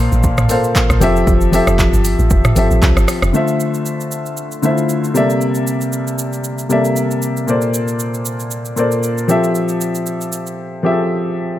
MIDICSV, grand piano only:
0, 0, Header, 1, 2, 480
1, 0, Start_track
1, 0, Tempo, 517241
1, 1180, Time_signature, 4, 2, 24, 8
1, 10757, End_track
2, 0, Start_track
2, 0, Title_t, "Grand piano"
2, 0, Program_c, 0, 0
2, 0, Control_c, 0, 64, 127
2, 0, Note_on_c, 0, 46, 90
2, 0, Note_on_c, 0, 58, 83
2, 0, Note_on_c, 0, 69, 82
2, 0, Note_on_c, 0, 72, 86
2, 0, Note_on_c, 0, 74, 93
2, 0, Note_on_c, 0, 77, 98
2, 268, Note_off_c, 0, 46, 0
2, 271, Note_off_c, 0, 58, 0
2, 275, Note_off_c, 0, 69, 0
2, 279, Note_off_c, 0, 72, 0
2, 282, Note_off_c, 0, 77, 0
2, 450, Note_on_c, 0, 46, 78
2, 457, Note_on_c, 0, 58, 70
2, 465, Note_on_c, 0, 69, 73
2, 472, Note_on_c, 0, 72, 77
2, 479, Note_on_c, 0, 77, 88
2, 930, Note_on_c, 0, 53, 95
2, 935, Note_off_c, 0, 46, 0
2, 937, Note_on_c, 0, 60, 85
2, 938, Note_off_c, 0, 69, 0
2, 939, Note_off_c, 0, 58, 0
2, 945, Note_on_c, 0, 67, 84
2, 946, Note_off_c, 0, 72, 0
2, 950, Note_off_c, 0, 77, 0
2, 952, Note_on_c, 0, 69, 86
2, 954, Control_c, 0, 64, 0
2, 960, Note_off_c, 0, 74, 0
2, 960, Note_on_c, 0, 76, 105
2, 1138, Control_c, 0, 64, 127
2, 1329, Note_off_c, 0, 53, 0
2, 1333, Note_off_c, 0, 60, 0
2, 1336, Note_off_c, 0, 67, 0
2, 1340, Note_off_c, 0, 69, 0
2, 1344, Note_off_c, 0, 76, 0
2, 1410, Note_on_c, 0, 53, 90
2, 1417, Note_on_c, 0, 60, 79
2, 1425, Note_on_c, 0, 67, 79
2, 1432, Note_on_c, 0, 69, 84
2, 1440, Note_on_c, 0, 76, 101
2, 2188, Note_off_c, 0, 53, 0
2, 2192, Note_off_c, 0, 60, 0
2, 2195, Note_off_c, 0, 67, 0
2, 2199, Note_off_c, 0, 69, 0
2, 2203, Note_off_c, 0, 76, 0
2, 2370, Note_on_c, 0, 53, 75
2, 2377, Note_on_c, 0, 60, 70
2, 2385, Note_on_c, 0, 67, 72
2, 2392, Note_on_c, 0, 69, 72
2, 2400, Note_on_c, 0, 76, 88
2, 2961, Note_off_c, 0, 53, 0
2, 2965, Note_off_c, 0, 60, 0
2, 2968, Note_off_c, 0, 67, 0
2, 2972, Note_off_c, 0, 69, 0
2, 2976, Note_off_c, 0, 76, 0
2, 3090, Note_on_c, 0, 50, 80
2, 3097, Note_on_c, 0, 57, 71
2, 3104, Note_on_c, 0, 65, 73
2, 3112, Note_on_c, 0, 72, 67
2, 3113, Control_c, 0, 64, 0
2, 3119, Note_on_c, 0, 76, 86
2, 3258, Control_c, 0, 64, 127
2, 3868, Note_off_c, 0, 50, 0
2, 3872, Note_off_c, 0, 57, 0
2, 3875, Note_off_c, 0, 65, 0
2, 3879, Note_off_c, 0, 72, 0
2, 3883, Note_off_c, 0, 76, 0
2, 4290, Note_on_c, 0, 50, 83
2, 4297, Note_on_c, 0, 57, 71
2, 4305, Note_on_c, 0, 64, 58
2, 4312, Note_on_c, 0, 72, 73
2, 4319, Note_on_c, 0, 76, 85
2, 4362, Note_on_c, 0, 65, 72
2, 4366, Note_off_c, 0, 64, 0
2, 4770, Note_on_c, 0, 48, 86
2, 4775, Note_off_c, 0, 50, 0
2, 4775, Note_on_c, 0, 55, 75
2, 4779, Note_off_c, 0, 57, 0
2, 4781, Note_on_c, 0, 58, 77
2, 4785, Note_off_c, 0, 76, 0
2, 4786, Note_off_c, 0, 72, 0
2, 4787, Note_on_c, 0, 69, 75
2, 4792, Control_c, 0, 64, 0
2, 4793, Note_on_c, 0, 74, 78
2, 4799, Note_on_c, 0, 76, 95
2, 4811, Note_off_c, 0, 65, 0
2, 4984, Control_c, 0, 64, 127
2, 5548, Note_off_c, 0, 48, 0
2, 5551, Note_off_c, 0, 55, 0
2, 5554, Note_off_c, 0, 58, 0
2, 5557, Note_off_c, 0, 69, 0
2, 5560, Note_off_c, 0, 74, 0
2, 5563, Note_off_c, 0, 76, 0
2, 6210, Note_on_c, 0, 48, 80
2, 6215, Note_on_c, 0, 55, 71
2, 6221, Note_on_c, 0, 58, 76
2, 6227, Note_on_c, 0, 69, 76
2, 6233, Note_on_c, 0, 74, 74
2, 6239, Note_on_c, 0, 76, 88
2, 6801, Note_off_c, 0, 48, 0
2, 6803, Note_off_c, 0, 55, 0
2, 6806, Note_off_c, 0, 58, 0
2, 6809, Note_off_c, 0, 69, 0
2, 6812, Note_off_c, 0, 74, 0
2, 6815, Note_off_c, 0, 76, 0
2, 6930, Note_on_c, 0, 46, 78
2, 6937, Note_on_c, 0, 58, 73
2, 6945, Note_on_c, 0, 69, 68
2, 6950, Control_c, 0, 64, 0
2, 6952, Note_on_c, 0, 72, 75
2, 6959, Note_on_c, 0, 74, 87
2, 7092, Control_c, 0, 64, 127
2, 7708, Note_off_c, 0, 46, 0
2, 7712, Note_off_c, 0, 58, 0
2, 7715, Note_off_c, 0, 69, 0
2, 7719, Note_off_c, 0, 72, 0
2, 7723, Note_off_c, 0, 74, 0
2, 8130, Note_on_c, 0, 46, 81
2, 8137, Note_on_c, 0, 58, 71
2, 8144, Note_on_c, 0, 69, 73
2, 8152, Note_on_c, 0, 72, 75
2, 8159, Note_on_c, 0, 74, 88
2, 8610, Note_on_c, 0, 53, 89
2, 8615, Note_off_c, 0, 46, 0
2, 8618, Note_on_c, 0, 60, 79
2, 8619, Note_off_c, 0, 58, 0
2, 8619, Note_off_c, 0, 69, 0
2, 8625, Note_on_c, 0, 67, 79
2, 8626, Note_off_c, 0, 72, 0
2, 8630, Note_off_c, 0, 74, 0
2, 8632, Control_c, 0, 64, 0
2, 8633, Note_on_c, 0, 69, 81
2, 8640, Note_on_c, 0, 76, 91
2, 8769, Control_c, 0, 64, 127
2, 9388, Note_off_c, 0, 53, 0
2, 9392, Note_off_c, 0, 60, 0
2, 9396, Note_off_c, 0, 67, 0
2, 9399, Note_off_c, 0, 69, 0
2, 9403, Note_off_c, 0, 76, 0
2, 10050, Note_on_c, 0, 53, 79
2, 10057, Note_on_c, 0, 60, 69
2, 10064, Note_on_c, 0, 67, 76
2, 10072, Note_on_c, 0, 68, 56
2, 10079, Note_on_c, 0, 76, 89
2, 10129, Note_off_c, 0, 68, 0
2, 10129, Note_on_c, 0, 69, 73
2, 10641, Note_off_c, 0, 53, 0
2, 10644, Note_off_c, 0, 60, 0
2, 10648, Note_off_c, 0, 67, 0
2, 10655, Note_off_c, 0, 76, 0
2, 10680, Note_off_c, 0, 69, 0
2, 10757, End_track
0, 0, End_of_file